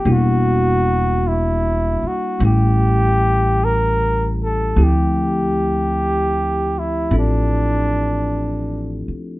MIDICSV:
0, 0, Header, 1, 5, 480
1, 0, Start_track
1, 0, Tempo, 1176471
1, 20, Time_signature, 4, 2, 24, 8
1, 3834, End_track
2, 0, Start_track
2, 0, Title_t, "Flugelhorn"
2, 0, Program_c, 0, 56
2, 0, Note_on_c, 0, 67, 67
2, 49, Note_on_c, 0, 66, 77
2, 55, Note_off_c, 0, 67, 0
2, 520, Note_on_c, 0, 64, 76
2, 527, Note_off_c, 0, 66, 0
2, 846, Note_on_c, 0, 66, 72
2, 852, Note_off_c, 0, 64, 0
2, 989, Note_off_c, 0, 66, 0
2, 1001, Note_on_c, 0, 67, 87
2, 1487, Note_on_c, 0, 70, 81
2, 1493, Note_off_c, 0, 67, 0
2, 1761, Note_off_c, 0, 70, 0
2, 1806, Note_on_c, 0, 69, 72
2, 1973, Note_on_c, 0, 67, 79
2, 1979, Note_off_c, 0, 69, 0
2, 2769, Note_on_c, 0, 64, 74
2, 2775, Note_off_c, 0, 67, 0
2, 2912, Note_off_c, 0, 64, 0
2, 2932, Note_on_c, 0, 62, 76
2, 3707, Note_off_c, 0, 62, 0
2, 3834, End_track
3, 0, Start_track
3, 0, Title_t, "Tine electric piano"
3, 0, Program_c, 1, 4
3, 0, Control_c, 1, 64, 127
3, 23, Note_on_c, 1, 55, 48
3, 23, Note_on_c, 1, 58, 47
3, 24, Note_on_c, 1, 62, 43
3, 26, Control_c, 1, 64, 0
3, 28, Note_on_c, 1, 64, 41
3, 28, Note_on_c, 1, 66, 49
3, 103, Control_c, 1, 64, 127
3, 971, Note_off_c, 1, 55, 0
3, 976, Note_on_c, 1, 55, 41
3, 980, Note_off_c, 1, 58, 0
3, 981, Note_off_c, 1, 62, 0
3, 982, Note_on_c, 1, 57, 36
3, 983, Note_off_c, 1, 64, 0
3, 983, Note_off_c, 1, 66, 0
3, 984, Control_c, 1, 64, 0
3, 987, Note_on_c, 1, 61, 37
3, 991, Note_on_c, 1, 64, 33
3, 999, Note_on_c, 1, 67, 43
3, 1067, Control_c, 1, 64, 127
3, 1940, Note_off_c, 1, 55, 0
3, 1941, Note_off_c, 1, 57, 0
3, 1943, Note_on_c, 1, 53, 50
3, 1945, Note_off_c, 1, 61, 0
3, 1945, Note_off_c, 1, 64, 0
3, 1946, Control_c, 1, 64, 0
3, 1946, Note_on_c, 1, 57, 43
3, 1947, Note_off_c, 1, 67, 0
3, 1948, Note_on_c, 1, 60, 43
3, 1950, Note_on_c, 1, 64, 42
3, 1952, Note_on_c, 1, 67, 60
3, 2021, Control_c, 1, 64, 127
3, 2897, Note_off_c, 1, 60, 0
3, 2902, Note_on_c, 1, 60, 39
3, 2907, Note_on_c, 1, 62, 33
3, 2909, Note_on_c, 1, 65, 31
3, 2912, Note_on_c, 1, 69, 37
3, 3834, Note_off_c, 1, 53, 0
3, 3834, Note_off_c, 1, 57, 0
3, 3834, Note_off_c, 1, 60, 0
3, 3834, Note_off_c, 1, 62, 0
3, 3834, Note_off_c, 1, 64, 0
3, 3834, Note_off_c, 1, 65, 0
3, 3834, Note_off_c, 1, 67, 0
3, 3834, Note_off_c, 1, 69, 0
3, 3834, End_track
4, 0, Start_track
4, 0, Title_t, "Upright bass"
4, 0, Program_c, 2, 32
4, 22, Note_on_c, 2, 28, 81
4, 811, Note_off_c, 2, 28, 0
4, 980, Note_on_c, 2, 33, 78
4, 1926, Note_off_c, 2, 33, 0
4, 1944, Note_on_c, 2, 38, 72
4, 2887, Note_off_c, 2, 38, 0
4, 2900, Note_on_c, 2, 33, 75
4, 3691, Note_off_c, 2, 33, 0
4, 3834, End_track
5, 0, Start_track
5, 0, Title_t, "Muted upright bass strokes"
5, 827, Note_on_c, 9, 29, 31
5, 868, Note_off_c, 9, 29, 0
5, 3705, Note_on_c, 9, 29, 36
5, 3746, Note_off_c, 9, 29, 0
5, 3834, End_track
0, 0, End_of_file